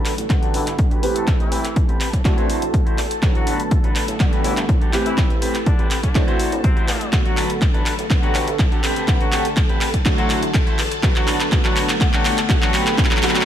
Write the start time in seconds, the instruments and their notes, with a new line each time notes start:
Already playing: grand piano D3 F#3 A3 B3 F#4, clean electric guitar D4 A4 B4, string machine A4 A5
0.05 analog synth bass A1, clap, open hi-hat
0.18 analog synth bass A1, closed hi-hat
0.29 grand piano D3 G3 A3 B3 F#5, muted clean electric guitar stroke, kick, clap, closed hi-hat
0.42 clean electric guitar D4 F#4 G4 A4, closed hi-hat
0.54 analog synth bass A1, horn section E3 E4, open hi-hat
0.67 analog synth bass G1, horn section E3 E4, clap, closed hi-hat
0.79 analog synth bass A1, kick, closed hi-hat
0.91 clean electric guitar D4 F#4 G4 B4, closed hi-hat
1.02 grand piano E3 A3 C4 G4 B4, clean electric guitar C4 G4 B4, open hi-hat
1.16 horn section A3 A4, closed hi-hat
1.27 analog synth bass A1, kick, clap, closed hi-hat
1.40 horn section E3 E4, closed hi-hat
1.51 clean electric guitar C4 G4 B4, open hi-hat
1.65 clap, closed hi-hat
1.76 muted clean electric guitar stroke, kick, closed hi-hat
1.88 analog synth bass A1, clean electric guitar C4 G4 B4, closed hi-hat
2.01 analog synth bass A1, clap, open hi-hat
2.13 analog synth bass A1, kick, closed hi-hat
2.24 analog synth bass A2, grand piano E3 A3 C4 D4 F#4, muted clean electric guitar stroke, kick, clap, closed hi-hat
2.37 clean electric guitar E4 F#4 C5, closed hi-hat
2.50 open hi-hat
2.62 analog synth bass A1, closed hi-hat
2.74 kick, closed hi-hat
2.86 clean electric guitar E4 F#4 C5, closed hi-hat
2.98 analog synth bass E2, clap, open hi-hat
3.11 muted clean electric guitar stroke, closed hi-hat
3.22 analog synth bass A1, grand piano D3 F#3 A3 B3 F#4, kick, clap, closed hi-hat
3.35 horn section F#3 F#4, closed hi-hat
3.46 clean electric guitar D4 A4 B4, open hi-hat
3.60 closed hi-hat
3.71 muted clean electric guitar stroke, kick, closed hi-hat
3.84 analog synth bass A1, clean electric guitar D4 A4 B4, closed hi-hat
3.96 analog synth bass A1, clap, open hi-hat
4.08 analog synth bass A1, closed hi-hat
4.19 grand piano D3 G3 A3 B3 F#5, muted clean electric guitar stroke, kick, clap, closed hi-hat
4.32 clean electric guitar D4 F#4 G4 B4, closed hi-hat
4.44 analog synth bass A1, horn section E3 E4, open hi-hat
4.57 analog synth bass G1, horn section E3 E4, clap, closed hi-hat
4.69 analog synth bass A1, kick, closed hi-hat
4.81 clean electric guitar D4 F#4 G4 A4, closed hi-hat
4.92 grand piano E3 A3 C4 G4 B4, clean electric guitar C4 G4 B4, clap, open hi-hat
5.06 horn section E3 E4, closed hi-hat
5.18 analog synth bass A1, kick, clap, closed hi-hat
5.30 closed hi-hat
5.41 clean electric guitar C4 G4 B4, open hi-hat
5.55 clap, closed hi-hat
5.66 horn section D3 D4, muted clean electric guitar stroke, kick, closed hi-hat
5.79 analog synth bass A1, clean electric guitar C4 G4 B4, closed hi-hat
5.91 analog synth bass A1, clap, open hi-hat
6.03 analog synth bass A1, horn section D3 D4, kick, closed hi-hat
6.14 analog synth bass A2, grand piano E3 A3 C4 D4 F#4, muted clean electric guitar stroke, kick, clap, closed hi-hat
6.27 clean electric guitar E4 F#4 C5, closed hi-hat
6.40 open hi-hat
6.52 analog synth bass A1, closed hi-hat
6.64 horn section C3 C4, kick, closed hi-hat
6.76 clean electric guitar E4 F#4 C5, closed hi-hat
6.88 analog synth bass E2, clap, open hi-hat
7.01 muted clean electric guitar stroke, closed hi-hat
7.12 analog synth bass A1, grand piano D3 F#3 A3 B3 F#4, string machine A4 A5, kick, clap, closed hi-hat
7.26 horn section F#3 F#4, closed hi-hat
7.37 clean electric guitar D4 A4 B4, clap, open hi-hat
7.50 closed hi-hat
7.61 muted clean electric guitar stroke, kick, clap, closed hi-hat
7.74 analog synth bass A1, clean electric guitar D4 A4 B4, closed hi-hat
7.86 analog synth bass A1, clap, open hi-hat
7.99 analog synth bass A1, closed hi-hat
8.10 grand piano D3 A3 B3 F#5, muted clean electric guitar stroke, kick, clap, closed hi-hat
8.22 horn section F#3 F#4, clean electric guitar D4 F#4 G4 B4, closed hi-hat
8.35 analog synth bass A1, clap, open hi-hat
8.48 analog synth bass G1, closed hi-hat
8.59 analog synth bass A1, kick, clap, closed hi-hat
8.71 clean electric guitar D4 F#4 G4 A4, closed hi-hat
8.83 clean electric guitar C4 G4 B4, clap, open hi-hat
8.96 closed hi-hat
9.07 analog synth bass A1, grand piano D3 A3 B4 F#5, kick, clap, closed hi-hat
9.21 horn section F#3 F#4, closed hi-hat
9.32 clean electric guitar C4 G4 A4, clap, open hi-hat
9.45 closed hi-hat
9.56 muted clean electric guitar stroke, kick, clap, closed hi-hat
9.69 analog synth bass A1, clean electric guitar C4 G4 B4, closed hi-hat
9.81 analog synth bass A1, clap, open hi-hat
9.94 analog synth bass A1, kick, closed hi-hat
10.05 analog synth bass A2, grand piano D3 F#3 A3 F#4, muted clean electric guitar stroke, kick, clap, closed hi-hat
10.18 horn section F#3 F#4, clean electric guitar E4 F#4 C5, closed hi-hat
10.30 clap, open hi-hat
10.43 analog synth bass A1, closed hi-hat
10.54 kick, clap, closed hi-hat
10.67 clean electric guitar E4 F#4 C5, closed hi-hat
10.79 analog synth bass E2, clap, open hi-hat
10.91 muted clean electric guitar stroke, closed hi-hat
11.02 analog synth bass A1, grand piano D3 F#3 A3 B3 F#4, kick, clap, closed hi-hat
11.16 horn section F#3 F#4, clap, closed hi-hat
11.27 clean electric guitar D4 A4 B4, clap, open hi-hat
11.40 clap, closed hi-hat
11.51 grand piano D3 F#3 A3 B3 F#4, muted clean electric guitar stroke, kick, clap, closed hi-hat
11.64 analog synth bass A1, horn section F#3 F#4, clean electric guitar D4 A4 B4, clap, closed hi-hat
11.76 clap, open hi-hat
11.89 analog synth bass A1, clap, closed hi-hat
12.00 grand piano D3 A3 B3 F#5, muted clean electric guitar stroke, kick, clap, closed hi-hat
12.12 horn section F#3 F#4, clean electric guitar D4 F#4 G4 A4, clap, closed hi-hat
12.25 analog synth bass A1, clap, open hi-hat
12.38 analog synth bass G1, clap, closed hi-hat
12.49 analog synth bass A1, grand piano D3 F#3 A3 B3 F#4, kick, clap, closed hi-hat
12.62 horn section F#3 F#4, clean electric guitar D4 F#4 G4 A4, clap, closed hi-hat
12.73 clean electric guitar C4 G4 B4, clap, open hi-hat
12.87 clap, closed hi-hat
12.97 analog synth bass A1, grand piano D3 F#3 A3 B3 F#4, kick, clap, closed hi-hat
13.05 clap
13.11 horn section F#3 F#4, clap, closed hi-hat
13.17 clap
13.22 grand piano D3 F#3 A3 B3 F#4, clean electric guitar C4 G4 B4, clap, open hi-hat
13.29 clap
13.35 horn section F#3 F#4, clap, closed hi-hat
13.41 clap